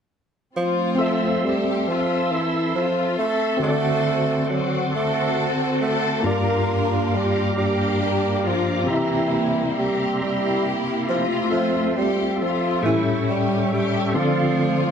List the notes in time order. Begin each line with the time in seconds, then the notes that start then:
0.57 F3 A3 C4 F4
0.95 C4 A4 E5 C6 E6
1.01 E5
1.44 G3 G4
1.87 F3 F4
2.32 E3 E4
2.75 F3 F4
3.19 A3 A4
3.57 D3 C4 F#4 A4
3.61 A3 C4 F#4 A4 C#5 F#5 D6
3.69 D5
4.50 F#3 F#4
4.95 A3 C4 F#4 A4
5.82 A3 A4
6.21 G2 A#3 F4 G4 F5 A#5
6.25 A#3 D4 F4 G4 A#4 D5
7.13 G3 G4
7.58 G3 A#3 D4 G4
8.02 G3
8.46 F3 F4
8.84 C3 C4 G4 E5 C6
8.88 E3 G3 A#3 E4 D#5 A#5
8.97 E5
9.78 G3 G4
10.22 G3 A#3 E4 G4
11.09 F3 A3 C4 F4
11.49 C4 F4 A4 E5
11.53 F3
11.97 G3 G4
12.41 F3 F4
12.81 A2 A#3 G4 A4 E5 G5 C#6
12.85 E3 G3 C#4 E4
13.29 G3 G4
13.73 G3 G4
14.14 D3 F3 C4 F4 A4 D5 F5 C6
14.18 A3 C4 F4